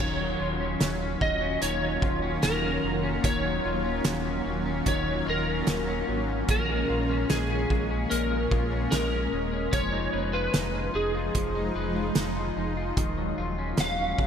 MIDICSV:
0, 0, Header, 1, 6, 480
1, 0, Start_track
1, 0, Time_signature, 4, 2, 24, 8
1, 0, Key_signature, -6, "minor"
1, 0, Tempo, 810811
1, 8447, End_track
2, 0, Start_track
2, 0, Title_t, "Electric slide guitar"
2, 0, Program_c, 0, 29
2, 0, Note_on_c, 0, 73, 85
2, 718, Note_off_c, 0, 73, 0
2, 721, Note_on_c, 0, 75, 78
2, 958, Note_off_c, 0, 75, 0
2, 960, Note_on_c, 0, 73, 76
2, 1416, Note_off_c, 0, 73, 0
2, 1440, Note_on_c, 0, 70, 73
2, 1776, Note_off_c, 0, 70, 0
2, 1923, Note_on_c, 0, 73, 89
2, 2882, Note_off_c, 0, 73, 0
2, 2889, Note_on_c, 0, 73, 73
2, 3108, Note_off_c, 0, 73, 0
2, 3135, Note_on_c, 0, 70, 72
2, 3584, Note_off_c, 0, 70, 0
2, 3850, Note_on_c, 0, 70, 78
2, 4320, Note_off_c, 0, 70, 0
2, 4322, Note_on_c, 0, 68, 77
2, 4794, Note_off_c, 0, 68, 0
2, 4797, Note_on_c, 0, 70, 73
2, 5268, Note_off_c, 0, 70, 0
2, 5275, Note_on_c, 0, 70, 83
2, 5758, Note_on_c, 0, 73, 96
2, 5772, Note_off_c, 0, 70, 0
2, 6118, Note_on_c, 0, 71, 84
2, 6130, Note_off_c, 0, 73, 0
2, 6455, Note_off_c, 0, 71, 0
2, 6485, Note_on_c, 0, 68, 69
2, 7418, Note_off_c, 0, 68, 0
2, 8172, Note_on_c, 0, 77, 90
2, 8447, Note_off_c, 0, 77, 0
2, 8447, End_track
3, 0, Start_track
3, 0, Title_t, "Clean electric guitar"
3, 0, Program_c, 1, 27
3, 0, Note_on_c, 1, 51, 68
3, 0, Note_on_c, 1, 54, 46
3, 0, Note_on_c, 1, 61, 48
3, 0, Note_on_c, 1, 65, 49
3, 114, Note_off_c, 1, 54, 0
3, 116, Note_on_c, 1, 54, 53
3, 134, Note_off_c, 1, 65, 0
3, 236, Note_on_c, 1, 65, 54
3, 353, Note_off_c, 1, 61, 0
3, 355, Note_on_c, 1, 61, 47
3, 467, Note_off_c, 1, 54, 0
3, 474, Note_on_c, 1, 54, 51
3, 594, Note_off_c, 1, 61, 0
3, 596, Note_on_c, 1, 61, 49
3, 709, Note_off_c, 1, 54, 0
3, 716, Note_on_c, 1, 54, 51
3, 832, Note_off_c, 1, 61, 0
3, 834, Note_on_c, 1, 61, 52
3, 948, Note_off_c, 1, 51, 0
3, 955, Note_on_c, 1, 51, 70
3, 1070, Note_off_c, 1, 54, 0
3, 1077, Note_on_c, 1, 54, 47
3, 1193, Note_off_c, 1, 65, 0
3, 1196, Note_on_c, 1, 65, 57
3, 1313, Note_off_c, 1, 61, 0
3, 1315, Note_on_c, 1, 61, 53
3, 1429, Note_off_c, 1, 54, 0
3, 1436, Note_on_c, 1, 54, 52
3, 1552, Note_off_c, 1, 61, 0
3, 1555, Note_on_c, 1, 61, 50
3, 1668, Note_off_c, 1, 54, 0
3, 1676, Note_on_c, 1, 54, 50
3, 1793, Note_off_c, 1, 61, 0
3, 1796, Note_on_c, 1, 61, 50
3, 1909, Note_off_c, 1, 51, 0
3, 1916, Note_on_c, 1, 51, 68
3, 2031, Note_off_c, 1, 54, 0
3, 2038, Note_on_c, 1, 54, 53
3, 2158, Note_off_c, 1, 65, 0
3, 2160, Note_on_c, 1, 65, 56
3, 2273, Note_off_c, 1, 61, 0
3, 2275, Note_on_c, 1, 61, 50
3, 2391, Note_off_c, 1, 54, 0
3, 2398, Note_on_c, 1, 54, 52
3, 2515, Note_off_c, 1, 61, 0
3, 2518, Note_on_c, 1, 61, 53
3, 2629, Note_off_c, 1, 54, 0
3, 2636, Note_on_c, 1, 54, 54
3, 2755, Note_off_c, 1, 61, 0
3, 2757, Note_on_c, 1, 61, 52
3, 2870, Note_off_c, 1, 51, 0
3, 2878, Note_on_c, 1, 51, 76
3, 2989, Note_off_c, 1, 54, 0
3, 2996, Note_on_c, 1, 54, 46
3, 3114, Note_off_c, 1, 65, 0
3, 3117, Note_on_c, 1, 65, 60
3, 3234, Note_off_c, 1, 61, 0
3, 3236, Note_on_c, 1, 61, 52
3, 3349, Note_off_c, 1, 54, 0
3, 3356, Note_on_c, 1, 54, 56
3, 3475, Note_off_c, 1, 61, 0
3, 3478, Note_on_c, 1, 61, 50
3, 3591, Note_off_c, 1, 54, 0
3, 3598, Note_on_c, 1, 54, 52
3, 3716, Note_off_c, 1, 61, 0
3, 3719, Note_on_c, 1, 61, 49
3, 3840, Note_on_c, 1, 46, 71
3, 3887, Note_off_c, 1, 51, 0
3, 3887, Note_off_c, 1, 54, 0
3, 3963, Note_on_c, 1, 56, 53
3, 4080, Note_off_c, 1, 65, 0
3, 4083, Note_on_c, 1, 65, 57
3, 4198, Note_off_c, 1, 61, 0
3, 4200, Note_on_c, 1, 61, 54
3, 4317, Note_off_c, 1, 56, 0
3, 4319, Note_on_c, 1, 56, 55
3, 4431, Note_off_c, 1, 61, 0
3, 4438, Note_on_c, 1, 61, 53
3, 4557, Note_off_c, 1, 56, 0
3, 4559, Note_on_c, 1, 56, 55
3, 4673, Note_off_c, 1, 61, 0
3, 4680, Note_on_c, 1, 61, 52
3, 4792, Note_off_c, 1, 46, 0
3, 4799, Note_on_c, 1, 46, 77
3, 4916, Note_off_c, 1, 56, 0
3, 4918, Note_on_c, 1, 56, 46
3, 5036, Note_off_c, 1, 65, 0
3, 5038, Note_on_c, 1, 65, 60
3, 5153, Note_off_c, 1, 61, 0
3, 5160, Note_on_c, 1, 61, 54
3, 5278, Note_off_c, 1, 56, 0
3, 5280, Note_on_c, 1, 56, 53
3, 5392, Note_off_c, 1, 61, 0
3, 5399, Note_on_c, 1, 61, 53
3, 5516, Note_off_c, 1, 56, 0
3, 5519, Note_on_c, 1, 56, 51
3, 5635, Note_off_c, 1, 61, 0
3, 5642, Note_on_c, 1, 61, 49
3, 5757, Note_on_c, 1, 53, 70
3, 5807, Note_off_c, 1, 46, 0
3, 5809, Note_off_c, 1, 61, 0
3, 5875, Note_on_c, 1, 63, 53
3, 5893, Note_off_c, 1, 65, 0
3, 5997, Note_on_c, 1, 71, 54
3, 6119, Note_on_c, 1, 65, 49
3, 6236, Note_off_c, 1, 63, 0
3, 6239, Note_on_c, 1, 63, 49
3, 6360, Note_off_c, 1, 65, 0
3, 6363, Note_on_c, 1, 65, 50
3, 6479, Note_off_c, 1, 63, 0
3, 6482, Note_on_c, 1, 63, 54
3, 6598, Note_off_c, 1, 65, 0
3, 6600, Note_on_c, 1, 65, 49
3, 6718, Note_off_c, 1, 53, 0
3, 6720, Note_on_c, 1, 53, 73
3, 6836, Note_off_c, 1, 63, 0
3, 6838, Note_on_c, 1, 63, 49
3, 6952, Note_off_c, 1, 71, 0
3, 6959, Note_on_c, 1, 71, 58
3, 7077, Note_off_c, 1, 65, 0
3, 7080, Note_on_c, 1, 65, 49
3, 7197, Note_off_c, 1, 63, 0
3, 7200, Note_on_c, 1, 63, 53
3, 7315, Note_off_c, 1, 65, 0
3, 7317, Note_on_c, 1, 65, 49
3, 7438, Note_off_c, 1, 63, 0
3, 7440, Note_on_c, 1, 63, 46
3, 7557, Note_off_c, 1, 65, 0
3, 7559, Note_on_c, 1, 65, 47
3, 7591, Note_off_c, 1, 56, 0
3, 7679, Note_off_c, 1, 53, 0
3, 7681, Note_on_c, 1, 51, 69
3, 7727, Note_off_c, 1, 71, 0
3, 7799, Note_on_c, 1, 54, 52
3, 7817, Note_off_c, 1, 65, 0
3, 7920, Note_on_c, 1, 65, 59
3, 7938, Note_off_c, 1, 63, 0
3, 8042, Note_on_c, 1, 61, 52
3, 8154, Note_off_c, 1, 54, 0
3, 8161, Note_on_c, 1, 54, 51
3, 8277, Note_off_c, 1, 61, 0
3, 8279, Note_on_c, 1, 61, 52
3, 8395, Note_off_c, 1, 54, 0
3, 8402, Note_on_c, 1, 54, 55
3, 8447, Note_off_c, 1, 51, 0
3, 8447, Note_off_c, 1, 54, 0
3, 8447, Note_off_c, 1, 61, 0
3, 8447, Note_off_c, 1, 65, 0
3, 8447, End_track
4, 0, Start_track
4, 0, Title_t, "Ambient pad"
4, 0, Program_c, 2, 92
4, 0, Note_on_c, 2, 51, 75
4, 0, Note_on_c, 2, 54, 79
4, 0, Note_on_c, 2, 58, 66
4, 0, Note_on_c, 2, 61, 68
4, 0, Note_on_c, 2, 65, 66
4, 3815, Note_off_c, 2, 51, 0
4, 3815, Note_off_c, 2, 54, 0
4, 3816, Note_off_c, 2, 65, 0
4, 3844, Note_on_c, 2, 56, 75
4, 5736, Note_off_c, 2, 58, 0
4, 5736, Note_off_c, 2, 61, 0
4, 5743, Note_off_c, 2, 56, 0
4, 5760, Note_on_c, 2, 53, 75
4, 5760, Note_on_c, 2, 63, 87
4, 5763, Note_on_c, 2, 56, 67
4, 7660, Note_off_c, 2, 53, 0
4, 7661, Note_off_c, 2, 63, 0
4, 7662, Note_off_c, 2, 56, 0
4, 7684, Note_on_c, 2, 58, 72
4, 7685, Note_on_c, 2, 54, 80
4, 7685, Note_on_c, 2, 65, 72
4, 7686, Note_on_c, 2, 51, 74
4, 7686, Note_on_c, 2, 61, 66
4, 8447, Note_off_c, 2, 51, 0
4, 8447, Note_off_c, 2, 54, 0
4, 8447, Note_off_c, 2, 58, 0
4, 8447, Note_off_c, 2, 61, 0
4, 8447, Note_off_c, 2, 65, 0
4, 8447, End_track
5, 0, Start_track
5, 0, Title_t, "Sub bass"
5, 0, Program_c, 3, 38
5, 0, Note_on_c, 3, 27, 97
5, 210, Note_off_c, 3, 27, 0
5, 238, Note_on_c, 3, 27, 84
5, 450, Note_off_c, 3, 27, 0
5, 478, Note_on_c, 3, 27, 88
5, 690, Note_off_c, 3, 27, 0
5, 717, Note_on_c, 3, 27, 96
5, 929, Note_off_c, 3, 27, 0
5, 959, Note_on_c, 3, 27, 89
5, 1171, Note_off_c, 3, 27, 0
5, 1198, Note_on_c, 3, 27, 81
5, 1410, Note_off_c, 3, 27, 0
5, 1438, Note_on_c, 3, 27, 91
5, 1650, Note_off_c, 3, 27, 0
5, 1681, Note_on_c, 3, 29, 88
5, 1891, Note_off_c, 3, 29, 0
5, 1917, Note_on_c, 3, 27, 107
5, 2130, Note_off_c, 3, 27, 0
5, 2160, Note_on_c, 3, 27, 95
5, 2371, Note_off_c, 3, 27, 0
5, 2399, Note_on_c, 3, 27, 96
5, 2611, Note_off_c, 3, 27, 0
5, 2640, Note_on_c, 3, 27, 85
5, 2851, Note_off_c, 3, 27, 0
5, 2880, Note_on_c, 3, 27, 98
5, 3091, Note_off_c, 3, 27, 0
5, 3118, Note_on_c, 3, 27, 82
5, 3330, Note_off_c, 3, 27, 0
5, 3358, Note_on_c, 3, 27, 88
5, 3570, Note_off_c, 3, 27, 0
5, 3602, Note_on_c, 3, 32, 79
5, 3812, Note_off_c, 3, 32, 0
5, 3841, Note_on_c, 3, 34, 102
5, 4052, Note_off_c, 3, 34, 0
5, 4082, Note_on_c, 3, 34, 96
5, 4292, Note_off_c, 3, 34, 0
5, 4325, Note_on_c, 3, 34, 102
5, 4534, Note_off_c, 3, 34, 0
5, 4560, Note_on_c, 3, 34, 86
5, 4771, Note_off_c, 3, 34, 0
5, 4805, Note_on_c, 3, 34, 98
5, 5014, Note_off_c, 3, 34, 0
5, 5042, Note_on_c, 3, 34, 86
5, 5252, Note_off_c, 3, 34, 0
5, 5282, Note_on_c, 3, 34, 94
5, 5492, Note_off_c, 3, 34, 0
5, 5523, Note_on_c, 3, 27, 85
5, 5733, Note_off_c, 3, 27, 0
5, 5761, Note_on_c, 3, 29, 96
5, 5972, Note_off_c, 3, 29, 0
5, 6002, Note_on_c, 3, 29, 93
5, 6212, Note_off_c, 3, 29, 0
5, 6241, Note_on_c, 3, 29, 89
5, 6452, Note_off_c, 3, 29, 0
5, 6480, Note_on_c, 3, 29, 92
5, 6691, Note_off_c, 3, 29, 0
5, 6718, Note_on_c, 3, 29, 92
5, 6930, Note_off_c, 3, 29, 0
5, 6959, Note_on_c, 3, 29, 78
5, 7171, Note_off_c, 3, 29, 0
5, 7197, Note_on_c, 3, 29, 95
5, 7409, Note_off_c, 3, 29, 0
5, 7438, Note_on_c, 3, 29, 82
5, 7650, Note_off_c, 3, 29, 0
5, 7679, Note_on_c, 3, 27, 103
5, 7890, Note_off_c, 3, 27, 0
5, 7921, Note_on_c, 3, 27, 96
5, 8132, Note_off_c, 3, 27, 0
5, 8160, Note_on_c, 3, 27, 97
5, 8371, Note_off_c, 3, 27, 0
5, 8397, Note_on_c, 3, 27, 93
5, 8447, Note_off_c, 3, 27, 0
5, 8447, End_track
6, 0, Start_track
6, 0, Title_t, "Drums"
6, 0, Note_on_c, 9, 36, 86
6, 57, Note_off_c, 9, 36, 0
6, 476, Note_on_c, 9, 42, 57
6, 477, Note_on_c, 9, 38, 93
6, 535, Note_off_c, 9, 42, 0
6, 536, Note_off_c, 9, 38, 0
6, 718, Note_on_c, 9, 36, 73
6, 777, Note_off_c, 9, 36, 0
6, 957, Note_on_c, 9, 42, 62
6, 1017, Note_off_c, 9, 42, 0
6, 1197, Note_on_c, 9, 36, 78
6, 1257, Note_off_c, 9, 36, 0
6, 1436, Note_on_c, 9, 42, 54
6, 1438, Note_on_c, 9, 38, 98
6, 1495, Note_off_c, 9, 42, 0
6, 1497, Note_off_c, 9, 38, 0
6, 1918, Note_on_c, 9, 36, 90
6, 1918, Note_on_c, 9, 42, 57
6, 1977, Note_off_c, 9, 36, 0
6, 1977, Note_off_c, 9, 42, 0
6, 2395, Note_on_c, 9, 42, 57
6, 2396, Note_on_c, 9, 38, 99
6, 2454, Note_off_c, 9, 42, 0
6, 2455, Note_off_c, 9, 38, 0
6, 2877, Note_on_c, 9, 42, 65
6, 2879, Note_on_c, 9, 36, 73
6, 2936, Note_off_c, 9, 42, 0
6, 2938, Note_off_c, 9, 36, 0
6, 3356, Note_on_c, 9, 42, 53
6, 3358, Note_on_c, 9, 38, 97
6, 3415, Note_off_c, 9, 42, 0
6, 3417, Note_off_c, 9, 38, 0
6, 3839, Note_on_c, 9, 42, 60
6, 3840, Note_on_c, 9, 36, 94
6, 3898, Note_off_c, 9, 42, 0
6, 3900, Note_off_c, 9, 36, 0
6, 4319, Note_on_c, 9, 42, 57
6, 4321, Note_on_c, 9, 38, 95
6, 4379, Note_off_c, 9, 42, 0
6, 4380, Note_off_c, 9, 38, 0
6, 4560, Note_on_c, 9, 36, 72
6, 4619, Note_off_c, 9, 36, 0
6, 4801, Note_on_c, 9, 42, 68
6, 4860, Note_off_c, 9, 42, 0
6, 5041, Note_on_c, 9, 36, 81
6, 5100, Note_off_c, 9, 36, 0
6, 5279, Note_on_c, 9, 42, 57
6, 5282, Note_on_c, 9, 38, 95
6, 5339, Note_off_c, 9, 42, 0
6, 5341, Note_off_c, 9, 38, 0
6, 5759, Note_on_c, 9, 42, 60
6, 5760, Note_on_c, 9, 36, 88
6, 5818, Note_off_c, 9, 42, 0
6, 5819, Note_off_c, 9, 36, 0
6, 6238, Note_on_c, 9, 42, 61
6, 6239, Note_on_c, 9, 38, 97
6, 6297, Note_off_c, 9, 42, 0
6, 6298, Note_off_c, 9, 38, 0
6, 6718, Note_on_c, 9, 42, 64
6, 6719, Note_on_c, 9, 36, 74
6, 6777, Note_off_c, 9, 42, 0
6, 6778, Note_off_c, 9, 36, 0
6, 7193, Note_on_c, 9, 42, 54
6, 7196, Note_on_c, 9, 38, 97
6, 7253, Note_off_c, 9, 42, 0
6, 7255, Note_off_c, 9, 38, 0
6, 7679, Note_on_c, 9, 36, 91
6, 7680, Note_on_c, 9, 42, 57
6, 7738, Note_off_c, 9, 36, 0
6, 7740, Note_off_c, 9, 42, 0
6, 8154, Note_on_c, 9, 42, 56
6, 8155, Note_on_c, 9, 38, 98
6, 8213, Note_off_c, 9, 42, 0
6, 8215, Note_off_c, 9, 38, 0
6, 8397, Note_on_c, 9, 36, 76
6, 8447, Note_off_c, 9, 36, 0
6, 8447, End_track
0, 0, End_of_file